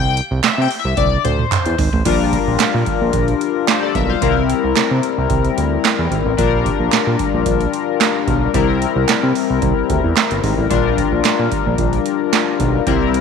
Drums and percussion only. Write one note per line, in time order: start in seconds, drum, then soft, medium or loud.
0.17 closed hi-hat medium
0.44 snare loud
0.44 clap medium
0.44 clap loud
0.44 closed hi-hat medium
0.71 open hi-hat medium
0.97 kick loud
0.97 closed hi-hat medium
0.97 high tom medium
1.25 closed hi-hat medium
1.25 mid tom medium
1.39 mid tom medium
1.52 clap medium
1.52 closed hi-hat loud
1.52 mid tom medium
1.66 closed hi-hat medium
1.78 floor tom loud
1.78 open hi-hat medium
1.93 floor tom medium
2.05 kick loud
2.05 closed hi-hat loud
2.05 crash medium
2.32 kick medium
2.32 closed hi-hat medium
2.60 snare loud
2.60 clap medium
2.60 closed hi-hat medium
2.61 clap loud
2.86 kick medium
2.86 closed hi-hat medium
3.13 kick loud
3.13 closed hi-hat medium
3.28 closed hi-hat soft
3.41 closed hi-hat medium
3.68 snare loud
3.68 clap medium
3.68 clap loud
3.68 closed hi-hat medium
3.95 kick loud
3.95 closed hi-hat medium
4.22 kick loud
4.22 closed hi-hat loud
4.50 closed hi-hat medium
4.76 snare loud
4.76 clap medium
4.76 clap loud
4.76 closed hi-hat medium
5.03 closed hi-hat medium
5.30 kick loud
5.30 closed hi-hat medium
5.45 closed hi-hat soft
5.58 closed hi-hat medium
5.85 snare loud
5.85 clap medium
5.85 clap loud
5.85 closed hi-hat medium
6.11 kick loud
6.11 closed hi-hat medium
6.38 kick loud
6.38 closed hi-hat loud
6.65 kick medium
6.65 closed hi-hat medium
6.93 snare loud
6.93 clap medium
6.93 closed hi-hat medium
6.94 clap loud
7.19 kick medium
7.19 closed hi-hat medium
7.46 kick loud
7.46 closed hi-hat medium
7.61 closed hi-hat soft
7.74 closed hi-hat medium
8.01 snare loud
8.01 clap medium
8.01 clap loud
8.01 closed hi-hat medium
8.27 kick loud
8.27 closed hi-hat medium
8.54 kick loud
8.54 closed hi-hat medium
8.82 closed hi-hat medium
9.09 snare loud
9.09 clap loud
9.09 closed hi-hat medium
9.10 clap loud
9.35 open hi-hat medium
9.62 kick loud
9.62 closed hi-hat medium
9.90 kick medium
9.90 closed hi-hat medium
10.17 snare loud
10.17 clap medium
10.17 clap loud
10.17 closed hi-hat medium
10.31 closed hi-hat medium
10.44 kick medium
10.44 open hi-hat medium
10.71 kick loud
10.71 closed hi-hat loud
10.97 kick medium
10.97 closed hi-hat medium
11.25 snare loud
11.25 clap medium
11.25 closed hi-hat medium
11.26 clap loud
11.52 kick medium
11.52 closed hi-hat medium
11.78 kick loud
11.78 closed hi-hat medium
11.93 closed hi-hat soft
12.06 closed hi-hat medium
12.33 snare loud
12.33 clap medium
12.33 clap loud
12.33 closed hi-hat medium
12.60 kick loud
12.60 closed hi-hat medium
12.87 kick loud
12.87 closed hi-hat loud
13.14 closed hi-hat medium